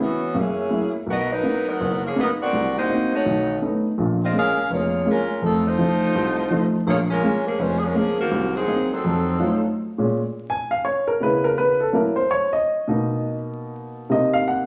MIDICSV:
0, 0, Header, 1, 3, 480
1, 0, Start_track
1, 0, Key_signature, -5, "minor"
1, 0, Tempo, 361882
1, 1422, Time_signature, 4, 2, 24, 8
1, 19446, End_track
2, 0, Start_track
2, 0, Title_t, "Saxophone section"
2, 0, Program_c, 0, 65
2, 33, Note_on_c, 0, 52, 68
2, 34, Note_on_c, 0, 59, 61
2, 35, Note_on_c, 0, 61, 65
2, 36, Note_on_c, 0, 66, 72
2, 487, Note_off_c, 0, 52, 0
2, 488, Note_off_c, 0, 59, 0
2, 488, Note_off_c, 0, 61, 0
2, 489, Note_off_c, 0, 66, 0
2, 510, Note_on_c, 0, 68, 83
2, 512, Note_on_c, 0, 61, 70
2, 513, Note_on_c, 0, 64, 67
2, 515, Note_on_c, 0, 54, 68
2, 1270, Note_off_c, 0, 68, 0
2, 1271, Note_off_c, 0, 61, 0
2, 1271, Note_off_c, 0, 64, 0
2, 1273, Note_off_c, 0, 54, 0
2, 1465, Note_on_c, 0, 59, 80
2, 1467, Note_on_c, 0, 70, 84
2, 1469, Note_on_c, 0, 75, 100
2, 1470, Note_on_c, 0, 66, 77
2, 1728, Note_off_c, 0, 59, 0
2, 1729, Note_off_c, 0, 70, 0
2, 1730, Note_off_c, 0, 66, 0
2, 1730, Note_off_c, 0, 75, 0
2, 1751, Note_on_c, 0, 71, 96
2, 1753, Note_on_c, 0, 63, 84
2, 1758, Note_on_c, 0, 70, 92
2, 1760, Note_on_c, 0, 54, 86
2, 2220, Note_off_c, 0, 71, 0
2, 2221, Note_off_c, 0, 63, 0
2, 2223, Note_off_c, 0, 70, 0
2, 2224, Note_off_c, 0, 54, 0
2, 2245, Note_on_c, 0, 59, 73
2, 2248, Note_on_c, 0, 63, 73
2, 2249, Note_on_c, 0, 54, 75
2, 2249, Note_on_c, 0, 70, 81
2, 2707, Note_off_c, 0, 59, 0
2, 2708, Note_off_c, 0, 63, 0
2, 2709, Note_off_c, 0, 54, 0
2, 2709, Note_off_c, 0, 70, 0
2, 2740, Note_on_c, 0, 68, 72
2, 2741, Note_on_c, 0, 58, 64
2, 2742, Note_on_c, 0, 61, 63
2, 2746, Note_on_c, 0, 53, 61
2, 2881, Note_off_c, 0, 58, 0
2, 2881, Note_off_c, 0, 68, 0
2, 2882, Note_off_c, 0, 61, 0
2, 2884, Note_off_c, 0, 53, 0
2, 2912, Note_on_c, 0, 54, 70
2, 2914, Note_on_c, 0, 59, 74
2, 2915, Note_on_c, 0, 63, 71
2, 2917, Note_on_c, 0, 70, 83
2, 3038, Note_off_c, 0, 54, 0
2, 3039, Note_off_c, 0, 59, 0
2, 3041, Note_off_c, 0, 63, 0
2, 3042, Note_off_c, 0, 70, 0
2, 3216, Note_on_c, 0, 74, 94
2, 3217, Note_on_c, 0, 70, 82
2, 3219, Note_on_c, 0, 66, 76
2, 3220, Note_on_c, 0, 60, 79
2, 3641, Note_off_c, 0, 70, 0
2, 3641, Note_off_c, 0, 74, 0
2, 3643, Note_off_c, 0, 60, 0
2, 3643, Note_off_c, 0, 66, 0
2, 3690, Note_on_c, 0, 72, 83
2, 3691, Note_on_c, 0, 58, 78
2, 3691, Note_on_c, 0, 63, 80
2, 3691, Note_on_c, 0, 66, 83
2, 4118, Note_off_c, 0, 72, 0
2, 4119, Note_off_c, 0, 58, 0
2, 4119, Note_off_c, 0, 63, 0
2, 4119, Note_off_c, 0, 66, 0
2, 4169, Note_on_c, 0, 57, 67
2, 4169, Note_on_c, 0, 73, 78
2, 4173, Note_on_c, 0, 63, 66
2, 4177, Note_on_c, 0, 66, 65
2, 4763, Note_off_c, 0, 57, 0
2, 4763, Note_off_c, 0, 73, 0
2, 4765, Note_off_c, 0, 63, 0
2, 4767, Note_off_c, 0, 66, 0
2, 5630, Note_on_c, 0, 60, 75
2, 5630, Note_on_c, 0, 68, 75
2, 5632, Note_on_c, 0, 65, 79
2, 5632, Note_on_c, 0, 75, 87
2, 5767, Note_off_c, 0, 60, 0
2, 5768, Note_off_c, 0, 68, 0
2, 5768, Note_off_c, 0, 75, 0
2, 5769, Note_off_c, 0, 65, 0
2, 5805, Note_on_c, 0, 61, 70
2, 5805, Note_on_c, 0, 77, 87
2, 5808, Note_on_c, 0, 68, 82
2, 5808, Note_on_c, 0, 70, 73
2, 6225, Note_off_c, 0, 61, 0
2, 6225, Note_off_c, 0, 77, 0
2, 6227, Note_off_c, 0, 68, 0
2, 6227, Note_off_c, 0, 70, 0
2, 6278, Note_on_c, 0, 73, 87
2, 6284, Note_on_c, 0, 58, 74
2, 6286, Note_on_c, 0, 65, 73
2, 6286, Note_on_c, 0, 68, 72
2, 6734, Note_off_c, 0, 73, 0
2, 6737, Note_off_c, 0, 58, 0
2, 6737, Note_off_c, 0, 65, 0
2, 6737, Note_off_c, 0, 68, 0
2, 6761, Note_on_c, 0, 70, 93
2, 6763, Note_on_c, 0, 65, 81
2, 6765, Note_on_c, 0, 56, 71
2, 6765, Note_on_c, 0, 61, 74
2, 7183, Note_off_c, 0, 70, 0
2, 7185, Note_off_c, 0, 56, 0
2, 7185, Note_off_c, 0, 61, 0
2, 7185, Note_off_c, 0, 65, 0
2, 7228, Note_on_c, 0, 69, 92
2, 7231, Note_on_c, 0, 53, 76
2, 7234, Note_on_c, 0, 60, 72
2, 7234, Note_on_c, 0, 63, 73
2, 7492, Note_off_c, 0, 69, 0
2, 7493, Note_off_c, 0, 53, 0
2, 7495, Note_off_c, 0, 60, 0
2, 7495, Note_off_c, 0, 63, 0
2, 7519, Note_on_c, 0, 63, 85
2, 7522, Note_on_c, 0, 72, 93
2, 7524, Note_on_c, 0, 65, 96
2, 7525, Note_on_c, 0, 57, 89
2, 8945, Note_off_c, 0, 63, 0
2, 8947, Note_off_c, 0, 72, 0
2, 8948, Note_off_c, 0, 57, 0
2, 8948, Note_off_c, 0, 65, 0
2, 9115, Note_on_c, 0, 68, 79
2, 9119, Note_on_c, 0, 73, 83
2, 9122, Note_on_c, 0, 65, 73
2, 9123, Note_on_c, 0, 58, 81
2, 9250, Note_off_c, 0, 68, 0
2, 9253, Note_off_c, 0, 73, 0
2, 9255, Note_off_c, 0, 65, 0
2, 9256, Note_off_c, 0, 58, 0
2, 9421, Note_on_c, 0, 61, 85
2, 9421, Note_on_c, 0, 65, 76
2, 9423, Note_on_c, 0, 70, 102
2, 9426, Note_on_c, 0, 56, 76
2, 9863, Note_off_c, 0, 61, 0
2, 9863, Note_off_c, 0, 65, 0
2, 9864, Note_off_c, 0, 70, 0
2, 9866, Note_off_c, 0, 56, 0
2, 9896, Note_on_c, 0, 68, 73
2, 9899, Note_on_c, 0, 61, 65
2, 9904, Note_on_c, 0, 53, 63
2, 9905, Note_on_c, 0, 58, 69
2, 10059, Note_off_c, 0, 68, 0
2, 10060, Note_off_c, 0, 61, 0
2, 10063, Note_off_c, 0, 53, 0
2, 10063, Note_off_c, 0, 58, 0
2, 10082, Note_on_c, 0, 61, 75
2, 10083, Note_on_c, 0, 72, 80
2, 10086, Note_on_c, 0, 65, 69
2, 10088, Note_on_c, 0, 56, 73
2, 10303, Note_off_c, 0, 61, 0
2, 10303, Note_off_c, 0, 72, 0
2, 10304, Note_off_c, 0, 65, 0
2, 10306, Note_off_c, 0, 56, 0
2, 10321, Note_on_c, 0, 68, 66
2, 10384, Note_off_c, 0, 68, 0
2, 10399, Note_on_c, 0, 56, 67
2, 10401, Note_on_c, 0, 65, 70
2, 10402, Note_on_c, 0, 61, 61
2, 10402, Note_on_c, 0, 70, 77
2, 10554, Note_off_c, 0, 61, 0
2, 10562, Note_off_c, 0, 56, 0
2, 10563, Note_off_c, 0, 65, 0
2, 10564, Note_off_c, 0, 70, 0
2, 10567, Note_on_c, 0, 58, 67
2, 10569, Note_on_c, 0, 68, 80
2, 10570, Note_on_c, 0, 61, 74
2, 10576, Note_on_c, 0, 53, 72
2, 10861, Note_off_c, 0, 58, 0
2, 10862, Note_off_c, 0, 61, 0
2, 10862, Note_off_c, 0, 68, 0
2, 10865, Note_off_c, 0, 53, 0
2, 10873, Note_on_c, 0, 66, 83
2, 10875, Note_on_c, 0, 51, 77
2, 10878, Note_on_c, 0, 58, 73
2, 10878, Note_on_c, 0, 60, 76
2, 11309, Note_off_c, 0, 66, 0
2, 11310, Note_off_c, 0, 51, 0
2, 11312, Note_off_c, 0, 58, 0
2, 11312, Note_off_c, 0, 60, 0
2, 11354, Note_on_c, 0, 60, 73
2, 11355, Note_on_c, 0, 54, 75
2, 11359, Note_on_c, 0, 63, 76
2, 11362, Note_on_c, 0, 68, 83
2, 11790, Note_off_c, 0, 54, 0
2, 11790, Note_off_c, 0, 60, 0
2, 11792, Note_off_c, 0, 63, 0
2, 11794, Note_off_c, 0, 68, 0
2, 11837, Note_on_c, 0, 63, 65
2, 11841, Note_on_c, 0, 60, 68
2, 11843, Note_on_c, 0, 69, 76
2, 11845, Note_on_c, 0, 54, 67
2, 12784, Note_off_c, 0, 63, 0
2, 12786, Note_off_c, 0, 60, 0
2, 12787, Note_off_c, 0, 69, 0
2, 12788, Note_off_c, 0, 54, 0
2, 19446, End_track
3, 0, Start_track
3, 0, Title_t, "Grand piano"
3, 0, Program_c, 1, 0
3, 0, Note_on_c, 1, 59, 45
3, 0, Note_on_c, 1, 61, 40
3, 0, Note_on_c, 1, 64, 46
3, 299, Note_off_c, 1, 59, 0
3, 301, Note_off_c, 1, 61, 0
3, 302, Note_off_c, 1, 64, 0
3, 454, Note_on_c, 1, 42, 56
3, 457, Note_on_c, 1, 58, 56
3, 872, Note_off_c, 1, 42, 0
3, 873, Note_off_c, 1, 58, 0
3, 929, Note_on_c, 1, 54, 47
3, 934, Note_on_c, 1, 58, 39
3, 936, Note_on_c, 1, 64, 49
3, 1256, Note_off_c, 1, 54, 0
3, 1259, Note_off_c, 1, 58, 0
3, 1260, Note_off_c, 1, 64, 0
3, 1414, Note_on_c, 1, 35, 54
3, 1833, Note_off_c, 1, 35, 0
3, 1901, Note_on_c, 1, 58, 43
3, 1905, Note_on_c, 1, 59, 39
3, 1912, Note_on_c, 1, 63, 48
3, 2224, Note_off_c, 1, 58, 0
3, 2225, Note_off_c, 1, 59, 0
3, 2229, Note_off_c, 1, 63, 0
3, 2393, Note_on_c, 1, 30, 60
3, 2803, Note_off_c, 1, 30, 0
3, 2864, Note_on_c, 1, 58, 49
3, 2874, Note_on_c, 1, 59, 44
3, 2879, Note_on_c, 1, 63, 49
3, 3186, Note_off_c, 1, 58, 0
3, 3191, Note_off_c, 1, 59, 0
3, 3193, Note_off_c, 1, 63, 0
3, 3355, Note_on_c, 1, 36, 58
3, 3765, Note_off_c, 1, 36, 0
3, 3831, Note_on_c, 1, 58, 41
3, 3840, Note_on_c, 1, 60, 41
3, 3845, Note_on_c, 1, 63, 47
3, 4150, Note_off_c, 1, 58, 0
3, 4154, Note_off_c, 1, 60, 0
3, 4157, Note_off_c, 1, 63, 0
3, 4316, Note_on_c, 1, 51, 56
3, 4319, Note_on_c, 1, 35, 58
3, 4726, Note_off_c, 1, 51, 0
3, 4727, Note_off_c, 1, 35, 0
3, 4796, Note_on_c, 1, 57, 45
3, 4801, Note_on_c, 1, 59, 41
3, 4806, Note_on_c, 1, 61, 40
3, 4812, Note_on_c, 1, 63, 51
3, 5113, Note_off_c, 1, 57, 0
3, 5115, Note_off_c, 1, 59, 0
3, 5118, Note_off_c, 1, 61, 0
3, 5121, Note_off_c, 1, 63, 0
3, 5279, Note_on_c, 1, 34, 54
3, 5286, Note_on_c, 1, 46, 56
3, 5687, Note_off_c, 1, 34, 0
3, 5692, Note_off_c, 1, 46, 0
3, 5744, Note_on_c, 1, 56, 39
3, 5746, Note_on_c, 1, 58, 40
3, 5758, Note_on_c, 1, 61, 48
3, 6067, Note_off_c, 1, 56, 0
3, 6068, Note_off_c, 1, 58, 0
3, 6074, Note_off_c, 1, 61, 0
3, 6238, Note_on_c, 1, 29, 54
3, 6647, Note_off_c, 1, 29, 0
3, 6710, Note_on_c, 1, 56, 48
3, 6714, Note_on_c, 1, 58, 44
3, 6721, Note_on_c, 1, 61, 50
3, 7030, Note_off_c, 1, 56, 0
3, 7032, Note_off_c, 1, 58, 0
3, 7036, Note_off_c, 1, 61, 0
3, 7187, Note_on_c, 1, 41, 54
3, 7189, Note_on_c, 1, 57, 57
3, 7601, Note_off_c, 1, 41, 0
3, 7603, Note_off_c, 1, 57, 0
3, 7673, Note_on_c, 1, 53, 47
3, 7681, Note_on_c, 1, 63, 50
3, 7684, Note_on_c, 1, 57, 42
3, 7992, Note_off_c, 1, 53, 0
3, 7996, Note_off_c, 1, 63, 0
3, 7997, Note_off_c, 1, 57, 0
3, 8158, Note_on_c, 1, 36, 62
3, 8567, Note_off_c, 1, 36, 0
3, 8627, Note_on_c, 1, 53, 50
3, 8639, Note_on_c, 1, 57, 48
3, 8639, Note_on_c, 1, 63, 52
3, 8949, Note_off_c, 1, 53, 0
3, 8955, Note_off_c, 1, 57, 0
3, 8955, Note_off_c, 1, 63, 0
3, 9111, Note_on_c, 1, 34, 61
3, 9523, Note_off_c, 1, 34, 0
3, 9584, Note_on_c, 1, 56, 49
3, 9591, Note_on_c, 1, 61, 46
3, 9593, Note_on_c, 1, 58, 44
3, 9907, Note_off_c, 1, 56, 0
3, 9910, Note_off_c, 1, 61, 0
3, 9912, Note_off_c, 1, 58, 0
3, 10072, Note_on_c, 1, 29, 58
3, 10484, Note_off_c, 1, 29, 0
3, 10538, Note_on_c, 1, 58, 44
3, 10540, Note_on_c, 1, 56, 51
3, 10541, Note_on_c, 1, 61, 52
3, 10864, Note_off_c, 1, 58, 0
3, 10865, Note_off_c, 1, 56, 0
3, 10865, Note_off_c, 1, 61, 0
3, 11032, Note_on_c, 1, 36, 59
3, 11444, Note_off_c, 1, 36, 0
3, 11511, Note_on_c, 1, 58, 45
3, 11519, Note_on_c, 1, 60, 37
3, 11519, Note_on_c, 1, 63, 54
3, 11830, Note_off_c, 1, 58, 0
3, 11834, Note_off_c, 1, 60, 0
3, 11834, Note_off_c, 1, 63, 0
3, 11994, Note_on_c, 1, 41, 61
3, 12404, Note_off_c, 1, 41, 0
3, 12458, Note_on_c, 1, 54, 53
3, 12458, Note_on_c, 1, 57, 44
3, 12462, Note_on_c, 1, 63, 44
3, 12468, Note_on_c, 1, 65, 50
3, 12783, Note_off_c, 1, 54, 0
3, 12783, Note_off_c, 1, 57, 0
3, 12785, Note_off_c, 1, 63, 0
3, 12788, Note_off_c, 1, 65, 0
3, 13239, Note_on_c, 1, 46, 50
3, 13241, Note_on_c, 1, 56, 45
3, 13257, Note_on_c, 1, 61, 53
3, 13527, Note_off_c, 1, 46, 0
3, 13528, Note_off_c, 1, 56, 0
3, 13537, Note_off_c, 1, 61, 0
3, 13925, Note_on_c, 1, 80, 78
3, 14205, Note_on_c, 1, 77, 71
3, 14210, Note_off_c, 1, 80, 0
3, 14379, Note_off_c, 1, 77, 0
3, 14387, Note_on_c, 1, 73, 72
3, 14680, Note_off_c, 1, 73, 0
3, 14689, Note_on_c, 1, 70, 70
3, 14860, Note_off_c, 1, 70, 0
3, 14860, Note_on_c, 1, 49, 48
3, 14869, Note_on_c, 1, 59, 44
3, 14879, Note_on_c, 1, 64, 48
3, 14895, Note_on_c, 1, 71, 73
3, 15174, Note_off_c, 1, 71, 0
3, 15175, Note_on_c, 1, 70, 75
3, 15343, Note_off_c, 1, 70, 0
3, 15358, Note_on_c, 1, 71, 83
3, 15606, Note_off_c, 1, 49, 0
3, 15610, Note_off_c, 1, 59, 0
3, 15616, Note_off_c, 1, 64, 0
3, 15645, Note_off_c, 1, 71, 0
3, 15655, Note_on_c, 1, 69, 65
3, 15816, Note_on_c, 1, 54, 46
3, 15823, Note_off_c, 1, 69, 0
3, 15826, Note_on_c, 1, 58, 45
3, 15833, Note_on_c, 1, 64, 50
3, 15848, Note_on_c, 1, 70, 66
3, 16129, Note_on_c, 1, 72, 67
3, 16130, Note_off_c, 1, 70, 0
3, 16175, Note_off_c, 1, 54, 0
3, 16180, Note_off_c, 1, 58, 0
3, 16184, Note_off_c, 1, 64, 0
3, 16300, Note_off_c, 1, 72, 0
3, 16326, Note_on_c, 1, 73, 78
3, 16609, Note_off_c, 1, 73, 0
3, 16617, Note_on_c, 1, 75, 70
3, 17077, Note_on_c, 1, 47, 52
3, 17093, Note_on_c, 1, 58, 46
3, 17096, Note_on_c, 1, 63, 54
3, 17695, Note_off_c, 1, 75, 0
3, 18645, Note_off_c, 1, 47, 0
3, 18652, Note_off_c, 1, 58, 0
3, 18654, Note_off_c, 1, 63, 0
3, 18697, Note_on_c, 1, 48, 50
3, 18703, Note_on_c, 1, 58, 43
3, 18715, Note_on_c, 1, 63, 52
3, 18725, Note_on_c, 1, 75, 69
3, 19008, Note_off_c, 1, 75, 0
3, 19014, Note_on_c, 1, 77, 79
3, 19181, Note_off_c, 1, 77, 0
3, 19203, Note_on_c, 1, 78, 66
3, 19446, Note_off_c, 1, 48, 0
3, 19446, Note_off_c, 1, 58, 0
3, 19446, Note_off_c, 1, 63, 0
3, 19446, Note_off_c, 1, 78, 0
3, 19446, End_track
0, 0, End_of_file